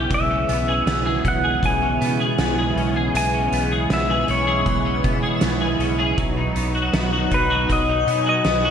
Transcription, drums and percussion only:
0.11 kick loud
0.11 closed hi-hat medium
0.49 closed hi-hat medium
0.87 snare loud
0.87 closed hi-hat medium
1.25 kick medium
1.25 closed hi-hat soft
1.63 kick medium
1.63 closed hi-hat medium
2.02 closed hi-hat medium
2.38 snare loud
2.38 closed hi-hat medium
2.78 closed hi-hat soft
3.15 closed hi-hat medium
3.52 closed hi-hat medium
3.90 snare loud
3.90 closed hi-hat medium
4.28 closed hi-hat medium
4.66 kick medium
4.66 closed hi-hat soft
5.04 kick medium
5.04 closed hi-hat soft
5.41 snare loud
5.41 closed hi-hat medium
5.80 closed hi-hat soft
6.18 kick loud
6.18 closed hi-hat medium
6.56 closed hi-hat medium
6.93 snare loud
6.93 closed hi-hat medium
7.31 kick medium
7.31 closed hi-hat medium
7.70 kick medium
7.70 closed hi-hat medium
8.08 closed hi-hat soft
8.45 snare loud
8.45 closed hi-hat medium

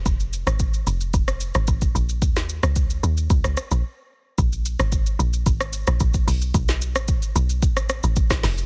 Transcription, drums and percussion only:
0.06 kick loud
0.06 shaker medium
0.20 shaker soft
0.33 shaker medium
0.47 cross-stick loud
0.47 shaker medium
0.59 kick medium
0.59 shaker medium
0.74 shaker soft
0.87 shaker loud
1.01 shaker soft
1.14 kick loud
1.14 shaker medium
1.28 cross-stick loud
1.28 shaker medium
1.40 shaker medium
1.55 cross-stick medium
1.55 shaker medium
1.67 kick loud
1.67 shaker medium
1.81 kick loud
1.81 shaker medium
1.96 shaker medium
2.09 shaker medium
2.22 kick loud
2.22 shaker medium
2.36 snare medium
2.36 shaker soft
2.49 shaker medium
2.63 cross-stick loud
2.63 shaker medium
2.76 kick medium
2.76 shaker medium
2.90 shaker soft
3.04 shaker loud
3.17 shaker soft
3.30 kick loud
3.30 shaker medium
3.44 cross-stick loud
3.44 shaker medium
3.57 cross-stick medium
3.57 shaker medium
3.71 shaker medium
4.38 kick loud
4.38 shaker medium
4.52 shaker medium
4.66 shaker medium
4.79 cross-stick loud
4.79 shaker medium
4.92 kick medium
4.92 shaker medium
5.06 shaker soft
5.20 shaker loud
5.33 shaker soft
5.46 kick loud
5.46 shaker medium
5.61 cross-stick loud
5.61 shaker medium
5.73 shaker medium
5.87 cross-stick medium
5.87 shaker medium
6.00 kick loud
6.00 shaker medium
6.14 kick loud
6.14 shaker medium
6.28 open hi-hat medium
6.28 shaker medium
6.41 shaker medium
6.54 kick loud
6.54 shaker medium
6.68 snare medium
6.68 shaker medium
6.82 shaker medium
6.96 cross-stick loud
6.96 shaker medium
7.08 kick medium
7.08 shaker medium
7.22 shaker medium
7.36 shaker loud
7.50 shaker medium
7.63 kick loud
7.63 shaker medium
7.77 cross-stick loud
7.77 shaker medium
7.89 cross-stick loud
7.89 shaker medium
8.03 shaker medium
8.16 kick loud
8.16 shaker medium
8.30 kick loud
8.30 cross-stick loud
8.30 snare medium
8.30 shaker medium
8.43 snare medium
8.43 open hi-hat medium
8.43 shaker medium
8.58 shaker medium

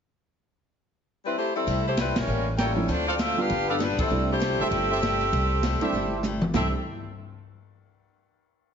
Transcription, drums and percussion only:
1.67 ride medium
1.97 snare medium
1.97 hi-hat pedal medium
1.97 ride medium
2.16 snare medium
2.16 ride medium
2.58 snare medium
2.58 hi-hat pedal soft
2.58 ride medium
2.89 ride medium
3.19 snare medium
3.19 hi-hat pedal medium
3.19 ride medium
3.50 ride medium
3.80 snare medium
3.80 hi-hat pedal soft
3.80 ride medium
3.98 kick medium
3.98 ride medium
4.41 snare medium
4.41 hi-hat pedal medium
4.41 ride medium
4.71 ride medium
5.03 snare medium
5.03 hi-hat pedal medium
5.03 ride medium
5.21 ride soft
5.33 ride medium
5.63 snare medium
5.63 hi-hat pedal medium
5.63 ride medium
5.81 ride soft
5.93 high tom soft
6.23 hi-hat pedal medium
6.23 high tom medium
6.41 mid tom medium
6.54 snare medium
6.54 floor tom medium
6.54 crash medium

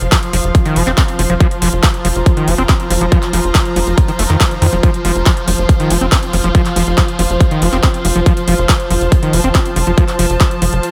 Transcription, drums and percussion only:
0.01 closed hi-hat soft
0.12 kick loud
0.12 clap loud
0.12 closed hi-hat medium
0.23 closed hi-hat soft
0.33 open hi-hat loud
0.44 closed hi-hat soft
0.55 kick loud
0.55 closed hi-hat medium
0.66 closed hi-hat soft
0.76 open hi-hat loud
0.87 clap soft
0.87 closed hi-hat soft
0.98 kick loud
0.98 clap loud
0.98 closed hi-hat medium
1.08 closed hi-hat soft
1.19 open hi-hat loud
1.30 closed hi-hat soft
1.40 kick loud
1.40 closed hi-hat medium
1.51 closed hi-hat soft
1.62 open hi-hat loud
1.83 kick loud
1.83 clap loud
1.83 closed hi-hat medium
1.94 closed hi-hat soft
2.05 open hi-hat loud
2.15 closed hi-hat soft
2.26 kick loud
2.26 closed hi-hat medium
2.37 closed hi-hat soft
2.48 open hi-hat loud
2.58 closed hi-hat soft
2.69 kick loud
2.69 clap loud
2.69 closed hi-hat medium
2.80 closed hi-hat soft
2.90 open hi-hat loud
3.01 closed hi-hat soft
3.12 kick loud
3.12 closed hi-hat medium
3.23 clap soft
3.23 closed hi-hat soft
3.33 open hi-hat loud
3.44 closed hi-hat soft
3.55 kick loud
3.55 clap loud
3.55 closed hi-hat medium
3.65 closed hi-hat soft
3.76 open hi-hat loud
3.87 closed hi-hat soft
3.98 kick loud
3.98 closed hi-hat medium
4.08 closed hi-hat soft
4.19 open hi-hat loud
4.30 clap soft
4.41 kick loud
4.41 clap loud
4.41 closed hi-hat medium
4.51 closed hi-hat soft
4.62 open hi-hat loud
4.73 closed hi-hat soft
4.83 kick loud
4.83 closed hi-hat medium
4.94 closed hi-hat soft
5.05 open hi-hat loud
5.16 closed hi-hat soft
5.26 kick loud
5.26 clap loud
5.26 closed hi-hat medium
5.37 closed hi-hat soft
5.48 open hi-hat loud
5.58 closed hi-hat soft
5.69 kick loud
5.69 closed hi-hat medium
5.80 closed hi-hat soft
5.90 open hi-hat loud
6.01 closed hi-hat soft
6.12 kick loud
6.12 clap loud
6.12 closed hi-hat medium
6.23 closed hi-hat soft
6.33 open hi-hat loud
6.44 closed hi-hat soft
6.55 kick loud
6.55 closed hi-hat medium
6.66 clap soft
6.66 closed hi-hat soft
6.76 open hi-hat loud
6.87 closed hi-hat soft
6.98 kick loud
6.98 clap loud
6.98 closed hi-hat medium
7.08 closed hi-hat soft
7.19 open hi-hat loud
7.30 closed hi-hat soft
7.41 kick loud
7.41 closed hi-hat medium
7.51 closed hi-hat soft
7.62 open hi-hat loud
7.73 clap soft
7.73 closed hi-hat soft
7.83 kick loud
7.83 clap loud
7.83 closed hi-hat medium
7.94 closed hi-hat soft
8.05 open hi-hat loud
8.15 closed hi-hat soft
8.26 kick loud
8.26 closed hi-hat medium
8.37 closed hi-hat soft
8.48 open hi-hat loud
8.58 closed hi-hat soft
8.69 kick loud
8.69 clap loud
8.69 closed hi-hat medium
8.80 closed hi-hat soft
8.90 open hi-hat loud
9.01 closed hi-hat soft
9.12 kick loud
9.12 closed hi-hat medium
9.23 closed hi-hat soft
9.33 open hi-hat loud
9.44 closed hi-hat soft
9.55 kick loud
9.55 clap loud
9.55 closed hi-hat medium
9.65 closed hi-hat soft
9.76 open hi-hat loud
9.87 closed hi-hat soft
9.98 kick loud
9.98 closed hi-hat medium
10.08 clap soft
10.08 closed hi-hat soft
10.19 open hi-hat loud
10.30 closed hi-hat soft
10.40 kick loud
10.40 clap loud
10.40 closed hi-hat medium
10.51 closed hi-hat soft
10.62 open hi-hat loud
10.73 closed hi-hat soft
10.83 closed hi-hat medium

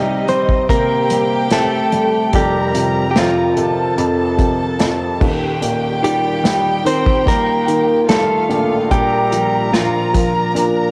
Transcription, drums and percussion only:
0.28 closed hi-hat medium
0.49 kick medium
0.69 kick medium
0.69 closed hi-hat medium
1.10 closed hi-hat medium
1.51 snare loud
1.51 closed hi-hat medium
1.92 closed hi-hat medium
2.33 kick medium
2.33 closed hi-hat medium
2.75 closed hi-hat medium
3.16 snare loud
3.16 closed hi-hat medium
3.57 closed hi-hat medium
3.98 closed hi-hat medium
4.39 kick medium
4.39 closed hi-hat medium
4.79 snare medium
4.79 closed hi-hat medium
5.21 kick loud
5.21 crash medium
5.62 closed hi-hat medium
6.04 closed hi-hat medium
6.45 snare medium
6.45 closed hi-hat medium
6.86 closed hi-hat medium
7.06 kick medium
7.27 kick medium
7.27 closed hi-hat medium
7.68 closed hi-hat medium
8.09 snare medium
8.09 closed hi-hat medium
8.50 closed hi-hat medium
8.91 kick medium
8.91 closed hi-hat medium
9.32 closed hi-hat medium
9.74 snare medium
9.74 closed hi-hat medium
10.14 kick medium
10.14 closed hi-hat medium
10.56 closed hi-hat medium

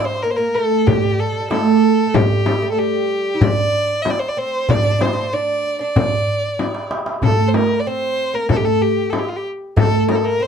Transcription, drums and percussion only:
0.40 darbuka ka soft
0.71 darbuka ka soft
0.87 frame drum medium
0.87 darbuka dum medium
1.51 darbuka tek medium
1.51 frame drum medium
2.14 frame drum medium
2.14 darbuka dum medium
2.46 darbuka tek medium
2.46 frame drum medium
2.94 darbuka ka soft
3.26 darbuka ka soft
3.41 darbuka dum medium
3.41 frame drum medium
4.05 darbuka tek medium
4.05 frame drum medium
4.69 darbuka dum medium
4.69 frame drum medium
5.01 darbuka tek medium
5.01 frame drum medium
5.49 darbuka ka soft
5.64 darbuka ka soft
5.96 darbuka dum medium
5.96 frame drum medium
6.59 darbuka tek medium
6.59 frame drum medium
6.75 darbuka ka medium
6.91 darbuka tek medium
7.06 darbuka ka medium
7.22 darbuka dum medium
7.22 frame drum medium
7.54 darbuka tek medium
7.54 frame drum medium
8.02 darbuka ka soft
8.18 darbuka ka soft
8.49 frame drum medium
8.49 darbuka dum medium
8.97 darbuka ka soft
9.13 darbuka tek medium
9.13 frame drum medium
9.77 darbuka dum loud
9.77 frame drum medium
10.09 darbuka tek medium
10.09 frame drum medium

